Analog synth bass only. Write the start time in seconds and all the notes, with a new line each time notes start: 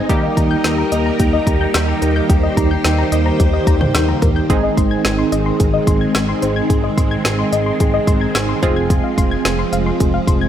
0.09 D#2
0.37 D#2
0.64 D#2
0.92 D#2
1.20 D#2
1.47 D#2
1.75 D#2
2.02 D#2
2.30 D#2
2.57 D#2
2.85 D#2
3.12 D#2
3.40 D#2
3.67 D#2
3.95 D#2
4.22 D#2
4.50 G#1
4.77 G#1
5.05 G#1
5.32 G#1
5.60 G#1
5.87 G#1
6.15 G#1
6.42 G#1
6.70 G#1
6.98 G#1
7.25 G#1
7.52 G#1
7.80 G#1
8.07 G#1
8.35 G#1
8.63 F1
9.18 F1
9.45 F1
9.73 F1
10.01 F1
10.28 F1